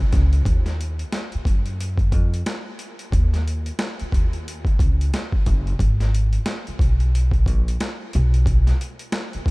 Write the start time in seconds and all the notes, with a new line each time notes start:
0.13 C#2, kick, snare, closed hi-hat
0.33 closed hi-hat
0.45 D#2, kick, closed hi-hat
0.66 snare, closed hi-hat
0.81 closed hi-hat
0.99 closed hi-hat
1.12 snare, closed hi-hat
1.32 muted upright bass stroke, closed hi-hat
1.45 F#2, kick, closed hi-hat
1.66 closed hi-hat
1.81 closed hi-hat
1.98 kick, closed hi-hat
2.12 F2, kick, closed hi-hat
2.34 closed hi-hat
2.46 snare, closed hi-hat
2.79 closed hi-hat
2.99 closed hi-hat
3.12 D#2, kick, closed hi-hat
3.34 snare, closed hi-hat
3.48 closed hi-hat
3.66 closed hi-hat
3.79 snare, closed hi-hat
4.00 muted upright bass stroke, closed hi-hat
4.12 D#2, kick, closed hi-hat
4.33 closed hi-hat
4.48 closed hi-hat
4.65 kick, closed hi-hat
4.79 C#2, kick, closed hi-hat
5.01 closed hi-hat
5.14 snare, closed hi-hat
5.32 kick
5.46 F#1, kick, closed hi-hat
5.67 closed hi-hat
5.79 G#1, kick, closed hi-hat
6.00 snare, closed hi-hat
6.15 closed hi-hat
6.33 closed hi-hat
6.46 snare, closed hi-hat
6.67 muted upright bass stroke, closed hi-hat
6.79 B1, kick, closed hi-hat
7.00 closed hi-hat
7.15 closed hi-hat
7.31 kick, closed hi-hat
7.46 A#1, kick, closed hi-hat
7.68 closed hi-hat
7.80 snare, closed hi-hat
8.13 B1, closed hi-hat
8.34 closed hi-hat
8.46 kick, closed hi-hat
8.67 snare, closed hi-hat
8.81 closed hi-hat
8.99 closed hi-hat
9.12 snare, closed hi-hat
9.33 muted upright bass stroke, closed hi-hat
9.46 B1, kick